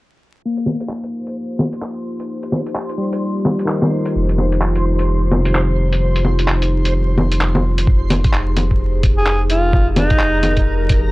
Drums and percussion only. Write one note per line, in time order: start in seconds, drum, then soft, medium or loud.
0.57 closed hi-hat soft
0.66 low bongo soft
0.80 closed hi-hat medium
0.89 clap medium
1.04 closed hi-hat soft
1.27 closed hi-hat medium
1.59 low bongo medium
1.73 closed hi-hat medium
1.82 clap medium
2.20 closed hi-hat soft
2.43 closed hi-hat soft
2.52 low bongo soft
2.66 closed hi-hat medium
2.75 clap loud
2.89 closed hi-hat soft
3.13 closed hi-hat medium
3.45 low bongo medium
3.59 closed hi-hat medium
3.68 clap loud
3.82 low bongo medium
4.06 closed hi-hat soft
4.29 closed hi-hat soft
4.38 low bongo soft
4.52 closed hi-hat medium
4.61 clap loud
4.75 closed hi-hat soft
4.99 closed hi-hat medium
5.32 low bongo medium
5.45 closed hi-hat medium
5.55 clap loud
5.93 closed hi-hat soft
6.16 closed hi-hat soft
6.25 low bongo soft
6.39 closed hi-hat soft
6.48 clap loud
6.62 closed hi-hat soft
6.85 closed hi-hat medium
7.18 low bongo medium
7.32 closed hi-hat medium
7.41 clap loud
7.55 low bongo medium
7.78 closed hi-hat soft
7.87 kick loud
8.10 closed hi-hat medium
8.10 low bongo medium
8.24 kick loud
8.24 closed hi-hat soft
8.33 clap loud
8.57 closed hi-hat medium
8.57 low bongo soft
8.71 kick medium
9.03 kick loud
9.03 closed hi-hat medium
9.26 clap loud
9.50 closed hi-hat medium
9.73 kick loud
9.96 closed hi-hat medium
9.96 low bongo medium
10.10 kick loud
10.10 closed hi-hat soft
10.19 clap loud
10.43 closed hi-hat medium
10.43 low bongo soft
10.57 kick medium
10.57 closed hi-hat soft
10.89 kick loud
10.89 closed hi-hat medium